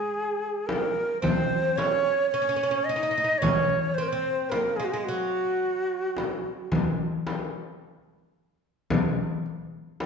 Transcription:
0.00 1.29 G#3 medium
0.00 0.68 G#4 medium
0.14 darbuka ka soft
0.67 1.21 A#4 medium
0.67 darbuka tek medium
0.67 frame drum medium
1.21 1.77 C4 medium
1.21 1.77 C5 medium
1.21 darbuka dum medium
1.21 frame drum medium
1.76 2.33 C#4 medium
1.76 2.30 C#5 medium
1.76 darbuka tek medium
1.76 frame drum medium
2.30 2.41 C#4 medium
2.30 2.86 C#5 medium
2.42 2.48 C#4 medium
2.49 2.55 C#4 medium
2.56 2.62 C#4 medium
2.63 2.70 C#4 medium
2.71 2.79 C#4 medium
2.85 3.40 D#5 medium
2.89 2.95 D#4 medium
2.96 3.02 D#4 medium
3.03 3.10 D#4 medium
3.11 3.16 D#4 medium
3.18 3.23 D#4 medium
3.24 3.33 D#4 medium
3.38 3.98 C#4 medium
3.38 3.96 C#5 loud
3.43 darbuka dum medium
3.43 frame drum medium
3.94 4.11 C4 medium
3.94 4.04 C5 medium
3.94 darbuka ka soft
4.02 4.10 A#4 medium
4.08 4.51 C5 medium
4.12 4.54 C4 medium
4.50 4.79 A#3 medium
4.50 4.78 A#4 medium
4.50 darbuka tek medium
4.50 frame drum medium
4.76 4.92 G#3 medium
4.76 4.86 G#4 medium
4.84 4.93 F#4 medium
4.92 5.08 G#3 medium
4.92 4.99 G#4 medium
4.99 5.06 G#4 medium
5.05 6.68 F#3 medium
5.05 6.71 F#4 medium
5.63 darbuka ka soft
6.17 darbuka tek medium
6.17 frame drum medium
6.72 frame drum medium
6.72 darbuka dum medium
7.27 darbuka tek medium
7.27 frame drum medium
8.90 frame drum medium
8.90 darbuka dum medium
9.46 darbuka ka soft
10.00 darbuka tek medium
10.00 frame drum medium

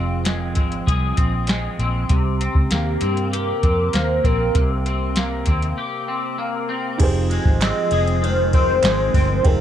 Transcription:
0.00 0.57 F1 loud
0.00 2.09 F2 medium
0.00 0.23 G#3 medium
0.00 0.55 C4 medium
0.00 0.86 G#4 medium
0.25 1.47 G#3 medium
0.25 snare loud
0.25 closed hi-hat loud
0.55 0.81 G#1 medium
0.55 1.17 C4 medium
0.55 kick medium
0.55 closed hi-hat medium
0.72 closed hi-hat soft
0.87 1.12 C2 medium
0.87 2.16 G#4 medium
0.87 kick medium
0.87 closed hi-hat medium
1.17 1.67 A#1 medium
1.17 1.79 C4 medium
1.17 kick medium
1.17 closed hi-hat medium
1.47 2.16 G#3 medium
1.47 snare loud
1.47 closed hi-hat medium
1.79 2.04 A#1 medium
1.79 2.41 C4 medium
1.79 closed hi-hat medium
2.09 2.47 C2 loud
2.09 4.54 C3 medium
2.09 kick loud
2.09 closed hi-hat medium
2.41 3.01 C4 medium
2.41 closed hi-hat medium
2.55 2.68 C#2 medium
2.55 kick medium
2.71 2.96 D#2 medium
2.71 3.92 A#3 medium
2.71 3.30 G4 medium
2.71 snare loud
2.71 closed hi-hat loud
3.01 3.51 G2 medium
3.01 3.63 C4 medium
3.01 closed hi-hat medium
3.17 closed hi-hat soft
3.33 5.77 G4 medium
3.33 3.96 A#4 loud
3.33 closed hi-hat medium
3.63 3.88 F2 medium
3.63 4.24 C4 medium
3.63 kick medium
3.63 closed hi-hat medium
3.93 4.19 D#2 medium
3.93 5.16 A#3 medium
3.93 4.27 C5 loud
3.93 snare loud
3.93 closed hi-hat medium
4.24 4.49 A#1 medium
4.24 4.85 C4 medium
4.24 4.86 A#4 loud
4.24 kick medium
4.24 closed hi-hat medium
4.55 5.43 C2 loud
4.55 7.01 C3 medium
4.55 kick loud
4.55 closed hi-hat medium
4.86 5.47 C4 medium
4.86 closed hi-hat medium
5.16 6.37 A#3 medium
5.16 snare loud
5.16 closed hi-hat loud
5.46 5.72 D#2 medium
5.46 6.08 C4 medium
5.46 kick medium
5.46 closed hi-hat medium
5.62 closed hi-hat soft
5.78 7.07 G4 medium
6.08 6.69 C4 medium
6.38 7.06 A#3 medium
6.69 7.62 C4 medium
6.98 7.37 F1 loud
6.98 9.44 F2 medium
6.98 9.61 G#3 medium
6.98 9.61 C4 medium
6.98 9.40 D#4 medium
6.98 9.61 D#4 medium
6.98 9.41 G4 medium
6.98 9.42 G#4 medium
6.98 kick loud
6.98 crash medium
6.98 ride medium
7.02 9.61 F3 medium
7.02 9.43 C5 medium
7.30 8.83 G#3 medium
7.30 ride medium
7.45 7.70 G#1 medium
7.45 kick medium
7.61 8.54 C4 medium
7.61 8.26 D#5 loud
7.61 snare loud
7.61 clap medium
7.61 ride medium
7.91 8.80 F1 loud
7.91 9.61 G#4 medium
7.91 ride medium
8.07 ride soft
8.23 9.61 D#3 medium
8.23 8.53 C5 loud
8.23 ride medium
8.53 9.14 C4 medium
8.53 9.48 C5 loud
8.53 kick medium
8.53 ride medium
8.83 9.08 G#1 medium
8.83 9.61 G#3 medium
8.83 snare loud
8.83 clap medium
8.83 ride medium
9.14 9.39 G1 loud
9.14 9.61 C4 medium
9.14 kick medium
9.14 open hi-hat soft
9.14 ride soft
9.43 9.61 F1 loud
9.43 9.61 F2 medium
9.43 9.61 D#4 medium
9.43 9.61 G#4 medium
9.43 9.61 A#4 loud
9.43 9.61 G5 medium
9.43 kick loud
9.43 ride medium
9.48 9.61 C5 medium

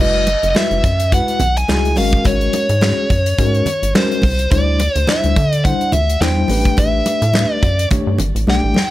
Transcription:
0.00 0.36 F#1 loud
0.00 0.26 G#3 medium
0.00 0.26 E4 medium
0.00 0.26 F#4 medium
0.00 0.26 B4 medium
0.00 0.47 D#5 loud
0.27 closed hi-hat medium
0.27 muted conga medium
0.43 0.54 F#1 loud
0.43 closed hi-hat soft
0.50 0.56 D#5 medium
0.55 0.82 G#3 medium
0.55 0.83 E4 medium
0.55 0.83 F#4 medium
0.55 0.83 B4 medium
0.55 1.14 E5 loud
0.55 snare loud
0.55 clap medium
0.55 high conga medium
0.71 0.82 F#1 loud
0.71 closed hi-hat soft
0.84 1.21 F#2 medium
0.84 kick loud
0.84 closed hi-hat medium
1.00 closed hi-hat medium
1.12 1.39 G#3 medium
1.12 1.39 E4 medium
1.12 1.39 F#4 medium
1.12 1.39 B4 loud
1.12 1.57 F#5 loud
1.12 kick loud
1.12 closed hi-hat loud
1.28 closed hi-hat soft
1.40 1.64 B1 medium
1.40 closed hi-hat medium
1.40 muted conga medium
1.40 low conga medium
1.57 1.95 G#5 loud
1.57 closed hi-hat soft
1.68 1.99 C#2 loud
1.68 1.95 G#3 medium
1.68 1.96 E4 medium
1.68 1.96 F#4 medium
1.68 1.96 G#4 loud
1.68 snare loud
1.68 clap medium
1.68 high conga medium
1.85 closed hi-hat soft
1.96 2.21 G#1 loud
1.96 2.66 G#3 medium
1.96 2.66 C#4 medium
1.96 2.66 F#4 medium
1.96 2.66 A#4 medium
1.96 2.27 F5 medium
1.96 open hi-hat medium
1.96 high conga medium
2.12 kick medium
2.12 closed hi-hat soft
2.25 2.49 G#1 loud
2.25 3.95 C#5 loud
2.25 kick loud
2.25 closed hi-hat medium
2.25 muted conga soft
2.41 closed hi-hat soft
2.53 closed hi-hat medium
2.53 muted conga medium
2.69 2.93 G#2 loud
2.69 closed hi-hat soft
2.81 3.09 G#3 medium
2.81 3.09 C#4 medium
2.81 3.09 F#4 medium
2.81 3.09 G#4 medium
2.81 snare loud
2.81 clap medium
2.81 high conga medium
3.10 3.34 F#2 medium
3.10 kick loud
3.10 closed hi-hat medium
3.10 muted conga soft
3.26 closed hi-hat medium
3.38 3.62 G#2 loud
3.38 3.65 G#3 medium
3.38 3.65 C#4 medium
3.38 3.66 F#4 medium
3.38 3.66 A#4 medium
3.38 kick loud
3.38 closed hi-hat medium
3.54 closed hi-hat soft
3.66 closed hi-hat medium
3.66 muted conga medium
3.66 low conga medium
3.83 3.93 G#1 medium
3.83 closed hi-hat medium
3.95 4.22 G#3 medium
3.95 4.22 C#4 medium
3.95 4.22 F#4 medium
3.95 4.23 A#4 medium
3.95 4.51 C5 medium
3.95 snare loud
3.95 clap medium
3.95 high conga medium
4.12 closed hi-hat soft
4.22 4.47 C2 medium
4.22 kick medium
4.22 open hi-hat medium
4.22 high conga medium
4.39 closed hi-hat medium
4.51 4.89 D2 loud
4.51 4.79 G3 medium
4.51 4.79 D4 medium
4.51 4.79 E4 medium
4.51 4.79 C5 medium
4.51 4.98 D5 loud
4.51 kick loud
4.51 closed hi-hat medium
4.51 muted conga soft
4.80 closed hi-hat medium
4.80 muted conga medium
4.96 5.06 D2 medium
4.96 5.10 C5 loud
4.96 closed hi-hat medium
5.07 5.35 G3 medium
5.07 5.35 D4 medium
5.07 5.35 E4 medium
5.07 5.35 C5 medium
5.07 5.53 E5 loud
5.07 snare loud
5.07 clap medium
5.07 high conga medium
5.24 5.35 D2 medium
5.24 closed hi-hat soft
5.36 5.74 D3 medium
5.36 kick loud
5.36 closed hi-hat medium
5.36 muted conga soft
5.53 5.65 D5 loud
5.53 closed hi-hat medium
5.64 5.92 G3 medium
5.64 5.92 D4 medium
5.64 5.92 E4 medium
5.64 5.92 C5 loud
5.64 5.93 F#5 loud
5.64 kick loud
5.64 closed hi-hat loud
5.81 closed hi-hat soft
5.92 6.17 D2 medium
5.92 6.21 E5 medium
5.92 closed hi-hat medium
5.92 muted conga soft
5.92 low conga medium
6.10 closed hi-hat medium
6.21 6.45 E2 loud
6.21 6.48 G3 medium
6.21 6.48 D4 medium
6.21 6.49 E4 medium
6.21 6.49 C5 loud
6.21 6.79 G5 medium
6.21 snare loud
6.21 clap medium
6.21 high conga medium
6.48 6.73 A1 loud
6.48 7.19 A3 medium
6.48 6.57 C#4 medium
6.48 7.19 G4 medium
6.48 7.20 B4 medium
6.48 open hi-hat medium
6.48 high conga medium
6.57 7.23 D4 medium
6.65 kick medium
6.65 closed hi-hat medium
6.77 7.02 A1 loud
6.77 7.54 E5 medium
6.77 kick loud
6.77 closed hi-hat loud
6.77 muted conga soft
7.06 closed hi-hat medium
7.06 muted conga medium
7.22 7.46 A2 loud
7.22 closed hi-hat soft
7.34 7.62 A3 medium
7.34 7.62 D4 medium
7.34 7.62 G4 medium
7.34 7.62 B4 medium
7.34 snare loud
7.34 clap medium
7.34 high conga medium
7.54 7.88 D5 medium
7.63 7.87 F#2 medium
7.63 kick loud
7.63 closed hi-hat medium
7.79 closed hi-hat medium
7.91 8.18 A3 medium
7.91 8.18 D4 medium
7.91 8.19 G4 medium
7.91 8.19 C#5 medium
7.91 kick loud
7.91 closed hi-hat medium
7.91 low conga medium
8.07 8.18 G2 loud
8.18 8.33 G1 medium
8.18 closed hi-hat medium
8.18 muted conga soft
8.18 low conga medium
8.35 8.46 A1 medium
8.35 closed hi-hat medium
8.47 8.61 B1 medium
8.47 8.75 A3 medium
8.47 8.75 D4 medium
8.47 8.75 G4 medium
8.47 8.75 D5 medium
8.47 8.90 G5 medium
8.47 snare medium
8.47 high conga medium
8.64 8.74 A1 medium
8.74 snare medium
8.74 high conga medium

